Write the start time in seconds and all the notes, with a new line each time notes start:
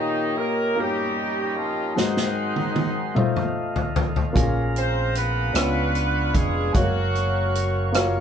Already playing: A#2 D#3 A#3 D#4 G4 C#5 D#5 A#5
0.38 A#3 A#4
0.76 A#3 C#4 D#4 G4
0.80 G3 G4 A#4
1.57 F3 F4
1.95 G#2 D#3 F#3 G#3 C4 D#4 F#4 G#4 C5 F#5 C6, snare
2.17 snare
2.56 high tom
2.76 high tom
3.15 A3 D#4 F4 A4 C5 F5, mid tom
3.36 mid tom
3.76 floor tom
3.96 floor tom
4.16 floor tom
4.33 A#1 A#2 A#3 C#4 F4 G#4 A#5, kick, closed hi-hat
4.76 C4 C5, closed hi-hat
5.15 B3 D4 F4 B4, closed hi-hat
5.53 C#2 C#3 B3 D4 F4 B4 C#5 F5 C#6, cross-stick, closed hi-hat
5.95 closed hi-hat
6.34 F1 G#3 G#4, kick, closed hi-hat
6.73 F#1 F#3 G#3 C#4 F#4 A#4 C#5 F5 C#6, kick, closed hi-hat
6.77 A#3
7.15 closed hi-hat
7.55 closed hi-hat
7.92 A#3 F4 F#4 C#5, cross-stick, closed hi-hat